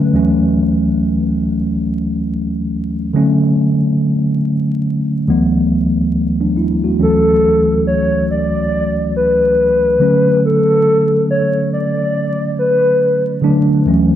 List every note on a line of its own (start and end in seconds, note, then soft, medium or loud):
0.00 0.16 D3 medium
0.00 0.14 F#3 medium
0.00 0.15 A3 medium
0.00 0.15 C#4 medium
0.13 1.42 D2 medium
0.13 1.42 E3 medium
0.13 1.43 F#3 medium
0.13 1.43 A3 medium
0.13 1.43 C#4 medium
3.13 4.53 D3 medium
3.13 4.54 F#3 medium
3.13 4.54 A3 medium
3.13 4.55 C#4 loud
5.28 6.35 D2 medium
5.28 6.36 E3 medium
5.28 5.71 F#3 medium
5.28 5.72 A3 medium
5.28 5.72 B3 loud
6.41 6.56 F#3 medium
6.41 6.56 D4 medium
6.57 6.83 E4 medium
6.84 6.99 A3 soft
6.84 7.25 F#4 medium
6.98 8.27 D2 medium
6.98 8.28 E3 medium
6.98 8.28 F#3 medium
6.98 8.28 A3 medium
6.98 8.29 C#4 medium
7.02 7.83 A4 loud
7.87 8.25 C#5 medium
8.31 9.11 D5 medium
9.16 10.40 B4 medium
9.99 11.39 D3 medium
9.99 11.39 F#3 medium
9.99 11.40 A3 medium
9.99 11.40 C#4 medium
10.45 11.26 A4 loud
11.31 11.68 C#5 medium
11.73 12.54 D5 medium
12.59 13.24 B4 medium
13.41 13.77 D3 medium
13.41 13.77 F#3 medium
13.41 13.78 A3 medium
13.41 13.78 D4 loud
13.85 14.15 D2 medium
13.85 14.15 E3 medium
13.85 14.15 F#3 medium
13.85 14.15 A3 medium
13.85 14.15 C#4 medium